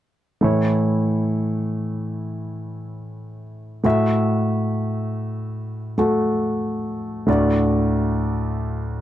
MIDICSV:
0, 0, Header, 1, 2, 480
1, 0, Start_track
1, 0, Key_signature, 3, "major"
1, 0, Tempo, 857143
1, 235, Time_signature, 4, 2, 24, 8
1, 5046, End_track
2, 0, Start_track
2, 0, Title_t, "Grand piano"
2, 0, Program_c, 0, 0
2, 230, Note_on_c, 0, 57, 40
2, 238, Note_on_c, 0, 64, 36
2, 239, Note_on_c, 0, 45, 35
2, 239, Note_on_c, 0, 52, 36
2, 248, Note_on_c, 0, 73, 40
2, 333, Control_c, 0, 64, 127
2, 2130, Note_off_c, 0, 57, 0
2, 2134, Note_off_c, 0, 45, 0
2, 2134, Note_off_c, 0, 52, 0
2, 2134, Note_off_c, 0, 64, 0
2, 2139, Note_off_c, 0, 73, 0
2, 2148, Note_on_c, 0, 57, 41
2, 2154, Note_on_c, 0, 45, 37
2, 2156, Note_on_c, 0, 66, 39
2, 2163, Control_c, 0, 64, 0
2, 2163, Note_on_c, 0, 76, 46
2, 2262, Control_c, 0, 64, 127
2, 3329, Note_off_c, 0, 57, 0
2, 3333, Note_off_c, 0, 66, 0
2, 3336, Note_off_c, 0, 76, 0
2, 3347, Note_on_c, 0, 57, 31
2, 3353, Note_on_c, 0, 66, 30
2, 3354, Note_on_c, 0, 69, 35
2, 4052, Note_off_c, 0, 45, 0
2, 4061, Note_off_c, 0, 57, 0
2, 4068, Note_off_c, 0, 66, 0
2, 4069, Note_on_c, 0, 57, 44
2, 4074, Note_off_c, 0, 69, 0
2, 4075, Note_on_c, 0, 45, 39
2, 4076, Note_on_c, 0, 38, 43
2, 4076, Note_on_c, 0, 66, 35
2, 4081, Control_c, 0, 64, 0
2, 4086, Note_on_c, 0, 74, 46
2, 4188, Control_c, 0, 64, 127
2, 5046, Note_off_c, 0, 38, 0
2, 5046, Note_off_c, 0, 45, 0
2, 5046, Note_off_c, 0, 57, 0
2, 5046, Note_off_c, 0, 66, 0
2, 5046, Note_off_c, 0, 74, 0
2, 5046, End_track
0, 0, End_of_file